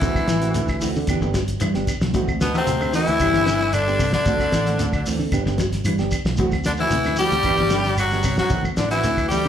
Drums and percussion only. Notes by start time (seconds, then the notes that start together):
0.01 kick, closed hi-hat, shekere
0.15 kick, claves, shekere
0.28 snare, closed hi-hat, shekere
0.42 closed hi-hat, shekere
0.54 closed hi-hat, shekere
0.68 kick, snare, claves, shekere
0.81 open hi-hat, shekere
0.96 shekere
1.07 kick, closed hi-hat, claves, shekere
1.22 shekere
1.34 kick, snare, closed hi-hat, shekere
1.48 closed hi-hat, shekere
1.60 closed hi-hat, claves, shekere
1.74 snare, shekere
1.87 kick, snare, closed hi-hat, claves, shekere
2.01 snare, shekere
2.14 kick, closed hi-hat, shekere
2.28 kick, claves, shekere
2.41 snare, closed hi-hat, shekere
2.54 snare, shekere
2.67 closed hi-hat, shekere
2.81 claves, shekere
2.93 open hi-hat, shekere
3.07 closed hi-hat, shekere
3.20 kick, closed hi-hat, claves, shekere
3.34 snare, shekere
3.46 snare, closed hi-hat, shekere
3.61 shekere
3.73 closed hi-hat, claves, shekere
3.88 shekere
4.00 kick, open hi-hat, claves, shekere
4.13 snare, shekere
4.26 kick, closed hi-hat, shekere
4.40 kick, snare, claves, shekere
4.52 snare, closed hi-hat, shekere
4.66 snare, closed hi-hat, shekere
4.79 snare, closed hi-hat, shekere
4.92 kick, snare, claves, shekere
5.06 open hi-hat, shekere
5.20 shekere
5.32 kick, closed hi-hat, claves, shekere
5.46 snare, shekere
5.58 kick, snare, closed hi-hat, shekere
5.73 snare, closed hi-hat, shekere
5.84 closed hi-hat, claves, shekere
5.98 snare, shekere
6.11 kick, snare, closed hi-hat, claves, shekere
6.25 snare, shekere
6.37 kick, closed hi-hat, shekere
6.51 kick, snare, claves, shekere
6.64 snare, closed hi-hat, shekere
6.77 shekere
6.90 closed hi-hat, shekere
7.04 snare, claves, shekere
7.16 open hi-hat, shekere
7.31 closed hi-hat, shekere
7.43 kick, closed hi-hat, claves, shekere
7.57 shekere
7.70 snare, closed hi-hat, shekere
7.84 snare, shekere
7.97 closed hi-hat, claves, shekere
8.11 snare, shekere
8.23 kick, open hi-hat, claves, shekere
8.37 snare, shekere
8.50 kick, closed hi-hat, shekere
8.65 kick, claves, shekere
8.77 snare, closed hi-hat, shekere
8.91 snare, closed hi-hat, shekere
9.04 closed hi-hat, shekere
9.17 kick, snare, claves, shekere
9.30 open hi-hat, shekere
9.44 shekere